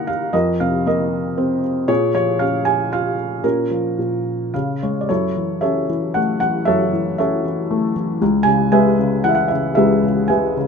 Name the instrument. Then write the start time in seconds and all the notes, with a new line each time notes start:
felt piano
Already playing: D#3 A#3 F#4 D#5 F#5 A#5
0.07 F5
0.33 F2 A#4 D#5
0.60 C3 F5
0.86 A#3 A#4 D#5
1.38 C4
1.88 A#2 G#4 C#5
2.15 F3 C#5
2.39 C#4 F5
2.65 G#5
2.92 F4 F5
3.44 A#2 C#4 A#4
3.71 F3
3.99 A#2
4.54 C#3 F5
4.83 G#3 C#5
5.01 D5
5.09 F#2 E4 A4 C#5
5.37 E3
5.61 C#4 A4 C#5 E5
5.89 E3
6.14 A3 F#5
6.40 E3 F#5
6.65 F#2 A4 C#5 E5
6.93 E3
7.18 C#4 A4 C#5 E5
7.45 E3
7.71 A3
7.96 E3
8.22 C#2
8.43 C#3 G#5
8.72 G#3 B4 E5 G#5
8.99 C#3
9.24 E3 F#5
9.29 E5
9.35 F#5
9.48 C#3 E5
9.75 C#2 G#4 B4 E5
10.04 C#3
10.28 G#3 B4 E5 G#5
10.57 C#3